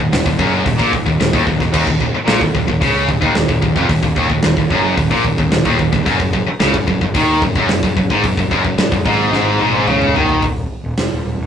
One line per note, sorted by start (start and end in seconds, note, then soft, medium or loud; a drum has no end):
0.00 0.11 D#1 medium
0.00 0.11 D#2 medium
0.12 0.25 D#1 medium
0.12 0.25 D#2 medium
0.12 snare loud
0.12 open hi-hat medium
0.26 0.38 D#1 medium
0.26 0.39 D#2 medium
0.26 kick medium
0.39 0.64 F#1 medium
0.39 0.65 F#2 loud
0.39 kick loud
0.66 0.78 D#1 medium
0.66 0.79 D#2 medium
0.66 kick medium
0.66 open hi-hat medium
0.79 0.92 A#1 medium
0.79 0.92 A#2 medium
0.79 kick medium
0.93 1.06 D#1 medium
0.93 1.05 D#2 medium
0.93 kick medium
1.06 1.19 D#1 medium
1.06 1.19 D#2 medium
1.06 kick medium
1.20 1.33 D#1 medium
1.20 1.32 D#2 medium
1.20 snare loud
1.20 open hi-hat medium
1.33 1.46 D#1 loud
1.33 1.46 D#2 medium
1.33 kick loud
1.47 1.59 D#1 medium
1.47 1.60 D#2 medium
1.47 kick medium
1.60 1.73 D#1 medium
1.60 1.73 D#2 medium
1.60 kick medium
1.60 snare soft
1.74 1.86 D#1 medium
1.74 1.87 D#2 loud
1.74 kick medium
1.74 crash loud
1.87 2.00 D#1 medium
1.87 2.00 D#2 medium
1.87 kick medium
2.00 2.13 D#1 medium
2.00 2.13 D#2 medium
2.00 kick medium
2.13 muted overdriven electric guitar stroke medium
2.13 muted fingered electric bass stroke soft
2.13 muted distorted electric guitar stroke medium
2.28 2.40 A#1 loud
2.28 2.40 A#2 loud
2.28 snare loud
2.28 open hi-hat medium
2.41 2.54 D#1 medium
2.41 2.54 D#2 medium
2.41 kick medium
2.55 2.67 D#1 medium
2.55 2.66 D#2 medium
2.55 kick medium
2.68 2.81 D#1 medium
2.68 2.82 D#2 medium
2.68 kick medium
2.81 3.07 C#2 loud
2.81 3.08 C#3 loud
2.81 kick loud
2.81 open hi-hat medium
3.08 3.21 D#1 medium
3.08 3.20 D#2 medium
3.08 kick medium
3.21 3.33 D#1 loud
3.21 3.33 D#2 medium
3.21 kick medium
3.34 3.48 D#1 medium
3.34 3.47 D#2 medium
3.34 snare loud
3.34 open hi-hat medium
3.48 3.62 D#1 medium
3.48 3.61 D#2 medium
3.48 kick medium
3.62 3.75 D#1 medium
3.62 3.75 D#2 medium
3.62 kick loud
3.75 3.89 F1 loud
3.75 3.89 F2 loud
3.75 kick medium
3.75 snare soft
3.89 4.02 D#1 medium
3.89 4.02 D#2 medium
3.89 kick loud
3.89 open hi-hat medium
4.03 4.16 D#1 medium
4.03 4.16 D#2 medium
4.03 kick medium
4.16 4.29 D#1 loud
4.16 4.29 D#2 loud
4.16 kick medium
4.30 4.43 D#1 medium
4.30 4.43 D#2 medium
4.30 kick medium
4.43 4.57 D#1 medium
4.43 4.57 D#2 medium
4.43 snare loud
4.43 open hi-hat medium
4.57 4.70 D#1 medium
4.57 4.71 D#2 medium
4.57 kick loud
4.70 4.96 F#1 loud
4.70 4.97 F#2 loud
4.70 kick medium
4.97 5.10 D#1 medium
4.97 5.11 D#2 medium
4.97 kick loud
4.97 open hi-hat medium
5.11 5.24 A#1 medium
5.11 5.24 A#2 medium
5.11 kick medium
5.24 5.37 D#1 medium
5.24 5.38 D#2 medium
5.24 kick medium
5.38 5.51 D#1 medium
5.38 5.51 D#2 medium
5.38 kick medium
5.52 5.65 D#1 medium
5.52 5.65 D#2 medium
5.52 snare loud
5.52 open hi-hat medium
5.65 5.79 D#1 loud
5.65 5.78 D#2 loud
5.65 kick loud
5.79 5.92 D#1 medium
5.79 5.91 D#2 medium
5.79 kick medium
5.93 6.06 D#1 medium
5.93 6.05 D#2 medium
5.93 kick loud
5.93 snare soft
6.06 6.19 F#1 loud
6.06 6.19 F#2 loud
6.06 kick loud
6.06 open hi-hat medium
6.20 6.33 F#1 medium
6.20 6.32 F#2 medium
6.20 kick medium
6.33 6.46 F#1 medium
6.33 6.46 F#2 medium
6.33 kick medium
6.47 muted distorted electric guitar stroke medium
6.47 muted fingered electric bass stroke soft
6.47 muted overdriven electric guitar stroke medium
6.60 6.73 C#2 loud
6.60 6.73 C#3 loud
6.60 snare loud
6.60 open hi-hat medium
6.74 6.87 F#1 medium
6.74 6.86 F#2 medium
6.74 kick loud
6.87 7.00 F#1 medium
6.87 7.00 F#2 medium
6.87 kick medium
7.01 7.14 F#1 medium
7.01 7.15 F#2 medium
7.01 kick medium
7.15 7.40 D#2 loud
7.15 7.41 D#3 loud
7.15 kick loud
7.15 open hi-hat medium
7.42 7.55 F#1 medium
7.42 7.55 F#2 medium
7.42 kick loud
7.55 7.68 F#1 loud
7.55 7.69 F#2 medium
7.55 kick medium
7.69 7.82 F#1 medium
7.69 7.82 F#2 medium
7.69 snare loud
7.69 open hi-hat medium
7.83 7.96 F#1 medium
7.83 7.96 F#2 medium
7.83 kick medium
7.97 8.10 F#1 medium
7.97 8.11 F#2 medium
7.97 kick medium
8.10 8.23 G#1 loud
8.10 8.23 G#2 loud
8.10 kick medium
8.24 8.37 F#1 medium
8.24 8.37 F#2 medium
8.24 kick loud
8.24 open hi-hat medium
8.37 8.50 F#1 medium
8.37 8.50 F#2 medium
8.37 kick medium
8.51 8.64 F#1 medium
8.51 8.63 F#2 loud
8.51 kick medium
8.64 8.78 F#1 medium
8.64 8.77 F#2 medium
8.64 kick medium
8.78 8.91 F#1 medium
8.78 8.91 F#2 medium
8.78 snare loud
8.78 open hi-hat medium
8.92 9.05 F#1 medium
8.92 9.06 F#2 medium
8.92 kick loud
9.05 9.31 G#1 loud
9.05 9.32 G#2 loud
9.05 kick medium
9.33 9.59 G#1 loud
9.33 9.60 G#2 loud
9.33 snare medium
9.61 9.73 G#1 loud
9.61 9.73 G#2 medium
9.61 high tom medium
9.74 9.86 G#1 medium
9.74 9.87 G#2 medium
9.87 10.13 C#2 loud
9.87 10.15 C#3 loud
9.87 mid tom medium
10.02 mid tom medium
10.16 10.41 D#2 medium
10.16 10.42 D#3 loud
10.16 floor tom loud
10.29 floor tom medium
10.42 10.55 D#1 medium
10.42 kick medium
10.42 open hi-hat medium
10.56 10.69 D#1 medium
10.70 muted fingered electric bass stroke soft
10.84 10.97 D#1 medium
10.98 11.11 F1 medium
10.98 snare loud
10.98 open hi-hat medium
11.12 11.24 D#1 medium
11.25 11.38 D#1 medium
11.39 11.46 D#1 medium